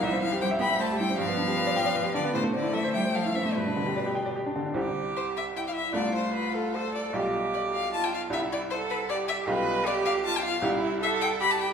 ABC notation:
X:1
M:3/4
L:1/16
Q:1/4=154
K:C
V:1 name="Violin"
e2 f2 g2 b2 a2 g2 | f8- f2 d2 | c2 d2 e2 g2 f2 e2 | B8 z4 |
z4 c2 e2 g f e2 | d2 c2 B2 A2 c2 d2 | z4 d2 f2 a g f2 | e2 d2 c2 B2 d2 e2 |
z4 d2 f2 a g f2 | z4 e2 g2 b a g2 |]
V:2 name="Grand piano"
C,, C E G c e g e c G E C | G,, B, D G B d g d B G D B, | A,, A, C E A c e c A E C A, | G,, D D, G d G g d G D D, D |
[C,,CEG]12 | [C,,A,F]12 | [B,,,G,FG]12 | [C,,G,EG]12 |
[B,,,G,FG]12 | [C,,G,EG]12 |]
V:3 name="Cello"
E,2 F,2 G,2 B,2 A,2 G,2 | F,8- F,2 D,2 | C,2 D,2 E,2 G,2 F,2 E,2 | B,,8 z4 |
G8 E4 | F8 A4 | G8 F4 | E4 A4 G4 |
B4 G4 F4 | E4 A4 G4 |]